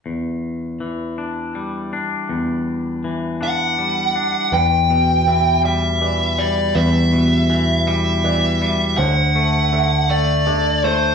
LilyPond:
<<
  \new Staff \with { instrumentName = "Lead electric guitar" } { \time 6/8 \key e \minor \tempo 4. = 54 r2. | r4. fis''4. | g''4. e''4 d''8 | e''4. e''4. |
fis''4. d''4 c''8 | }
  \new Staff \with { instrumentName = "Felt piano" } { \time 6/8 \key e \minor r2. | r2. | b'4 e''4 d''4 | b'4 e''4 d''4 |
c''4 e''4 d''4 | }
  \new Staff \with { instrumentName = "Clean electric guitar" } { \clef bass \time 6/8 \key e \minor e,4 e8 d'8 g8 d'8 | e,4 e8 d'8 g8 d'8 | e,8 b,8 e8 g8 e8 g8 | e,8 b,8 e8 g8 e8 g8 |
d8 a8 d8 a8 d8 a8 | }
  \new Staff \with { instrumentName = "Picked electric bass" } { \clef bass \time 6/8 \key e \minor r2. | r2. | e,2. | e,2. |
d,2. | }
>>